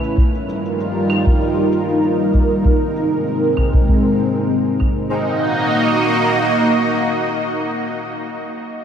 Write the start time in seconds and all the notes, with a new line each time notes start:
Already playing: A3 C#4 E4 B4
0.04 cabasa
0.17 G3 D#4 F4 A#4, kick, cabasa
0.35 cabasa
0.49 cabasa
0.65 cabasa
0.80 cabasa
1.10 cabasa, claves
1.26 kick, cabasa
1.41 cabasa
1.72 cabasa
1.89 cabasa
2.03 cabasa
2.19 cabasa
2.34 kick, cabasa
2.50 cabasa
2.65 G#3 C4, kick, cabasa
2.81 cabasa
2.96 cabasa
3.12 cabasa
3.27 cabasa
3.43 cabasa
3.57 kick, cabasa, claves
3.74 kick, cabasa
3.88 kick, cabasa
4.05 cabasa
4.20 cabasa
4.36 cabasa
4.50 cabasa
4.66 cabasa
4.80 kick, cabasa, claves
4.97 cabasa
5.11 A#3 D#4 F#4 D#5